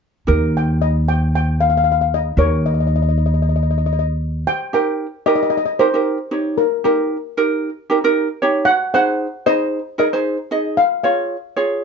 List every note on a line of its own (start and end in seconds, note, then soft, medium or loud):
0.27 2.34 D#2 medium
0.27 2.34 D#4 medium
0.27 2.34 G4 soft
0.27 2.34 A#4 medium
0.57 0.83 G5 medium
0.82 1.08 D#5 medium
1.08 1.34 G5 medium
1.35 1.59 G5 medium
1.61 1.68 F5 medium
1.70 1.76 F5 medium
1.77 1.83 F5 medium
1.84 1.91 F5 medium
1.92 1.99 F5 medium
2.01 2.07 F5 medium
2.14 2.40 D#5 medium
2.37 4.43 D#2 medium
2.37 4.44 D#4 soft
2.37 4.44 G4 soft
2.37 4.44 A#4 medium
2.37 2.50 C#5 medium
2.66 2.73 D#5 medium
2.74 2.79 D#5 soft
2.80 2.86 D#5 soft
2.87 2.94 D#5 soft
2.96 3.01 D#5 medium
3.02 3.07 D#5 soft
3.09 3.16 D#5 soft
3.18 3.25 D#5 soft
3.26 3.33 D#5 soft
3.34 3.40 D#5 soft
3.42 3.48 D#5 soft
3.49 3.55 D#5 soft
3.56 3.62 D#5 soft
3.63 3.70 D#5 soft
3.71 3.77 D#5 soft
3.78 3.85 D#5 soft
3.86 3.92 D#5 medium
3.93 3.98 D#5 soft
3.99 4.07 D#5 medium
4.47 4.73 G5 loud
4.73 5.06 D#4 medium
4.73 5.06 G4 medium
4.73 5.06 A#4 medium
4.73 5.28 G5 medium
5.26 5.59 D#4 medium
5.26 5.58 G4 medium
5.26 5.59 A#4 medium
5.26 5.34 D#5 medium
5.36 5.42 D#5 medium
5.43 5.49 D#5 medium
5.50 5.56 D#5 medium
5.57 5.64 D#5 medium
5.66 5.73 D#5 medium
5.79 5.88 D#4 medium
5.79 5.88 G4 medium
5.79 5.88 A#4 medium
5.79 6.60 C5 medium
5.94 6.17 D#4 medium
5.94 6.17 G4 medium
5.94 6.17 A#4 medium
6.31 6.63 D#4 medium
6.31 6.63 G4 medium
6.31 6.64 C#5 medium
6.58 6.84 A#4 medium
6.84 7.16 D#4 medium
6.84 7.16 G4 medium
6.84 7.16 A#4 medium
6.84 7.34 A#4 medium
7.37 7.69 D#4 medium
7.37 7.69 G4 medium
7.37 7.69 A#4 medium
7.90 7.98 D#4 medium
7.90 7.98 G4 medium
7.90 7.98 A#4 medium
8.04 8.27 D#4 medium
8.04 8.27 G4 medium
8.04 8.27 A#4 medium
8.42 8.68 D#4 medium
8.42 8.68 G4 medium
8.42 8.68 C#5 medium
8.65 8.78 F#5 loud
8.94 9.26 D#4 medium
8.94 9.26 G#4 medium
8.94 9.26 C5 medium
8.94 9.48 F#5 medium
9.46 9.78 D#4 medium
9.46 9.78 G#4 medium
9.46 9.78 C5 medium
9.46 9.98 D#5 medium
9.98 10.07 D#4 medium
9.98 10.07 G#4 soft
9.98 10.07 A#4 medium
9.98 10.74 D#5 medium
10.13 10.37 D#4 medium
10.13 10.37 G#4 medium
10.13 10.37 C5 medium
10.51 10.78 D#4 medium
10.51 10.78 G#4 medium
10.51 10.78 D#5 medium
10.77 11.02 F5 medium
11.03 11.36 F4 medium
11.03 11.36 G#4 soft
11.03 11.36 C#5 medium
11.03 11.53 F5 medium
11.56 11.84 F4 medium
11.56 11.84 G#4 medium
11.56 11.84 C#5 medium